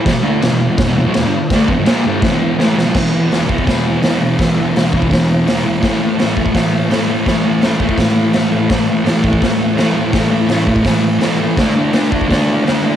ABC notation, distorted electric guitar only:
X:1
M:4/4
L:1/16
Q:1/4=166
K:A
V:1 name="Distorted electric guitar" clef=bass
[E,,B,,] [E,,B,,] [D,A,D]2 [E,,B,,] [E,,B,,]2 [E,,B,,] [E,,B,,] [E,,B,,] [E,,B,,] [B,,F,] [E,,B,,] [=G,,D,] z2 | [D,A,D]2 [E,,B,,] [=G,,D,] [^A,,=F,^A,]2 [G,,D,=G,]2 [=A,,E,] [E,,B,,E,]3 [A,,E,=A,]2 [E,,B,,] [^A,,F,] | [E,,B,,E,]2 [B,,E,]2 [E,,B,,E,]2 [B,,E,]2 [E,,B,,E,]4 [E,,B,,E,]2 [B,,E,]2 | [E,,B,,E,]2 [B,,E,]2 [E,,B,,E,]2 [B,,E,]2 [E,,B,,E,]4 [E,,B,,E,]2 [B,,E,]2 |
[A,,E,A,]2 [E,A,]2 [A,,E,A,]2 [E,A,]2 [A,,E,A,]4 [A,,E,A,]2 [E,A,]2 | [A,,E,A,]2 [E,A,]2 [A,,E,A,]2 [E,A,]2 [A,,E,A,]4 [A,,E,A,]2 [E,A,]2 | [A,,E,A,]2 [E,A,]2 [A,,E,A,]2 [E,A,]2 [A,,E,A,]4 [A,,E,A,]2 [E,A,]2 | [A,,E,A,]2 [E,A,]2 [A,,E,A,]2 [E,A,]2 [A,,E,A,]4 [A,,E,A,]2 [E,A,]2 |
[D,A,D]2 [A,D]2 [D,A,D]2 [A,D]2 [D,A,D]4 [D,A,D]2 [A,D]2 |]